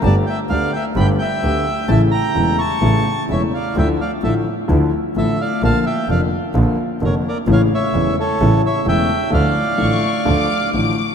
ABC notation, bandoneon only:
X:1
M:4/4
L:1/8
Q:1/4=129
K:Dm
V:1 name="Bandoneon"
[da] [eg] [df] [eg] [g=b] [eg]3 | [ea] [gb]2 [a^c']3 [^ce] [df] | [eg] [df] [Ae] z3 [Ae] [df] | [fa] [eg] [df] z3 [B^c] [Bd] |
[^cf] [ce]2 [Ac]2 [ce] [eg]2 | [df]6 z2 |]